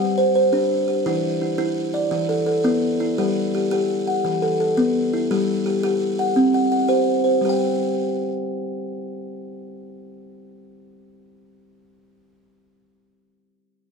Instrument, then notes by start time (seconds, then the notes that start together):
kalimba
Already playing: F#5
0.00 G3
0.18 C5
0.35 C5
0.53 D4 G4
0.88 G4
1.06 E3 E4
1.41 E4
1.58 E4
1.94 D5
2.11 E3
2.29 A4
2.46 A4
2.64 B3 E4
3.00 E4
3.18 G3 G4
3.55 G4
3.71 G4
4.07 F#5
4.25 E3
4.42 A4
4.60 A4
4.77 B3
5.13 E4
5.31 G3 G4
5.66 G4
5.83 G4
6.19 F#5
6.36 C4
6.54 F#5
6.72 F#5
6.88 G4 C5
7.24 C5
7.41 G3 G4
7.49 G5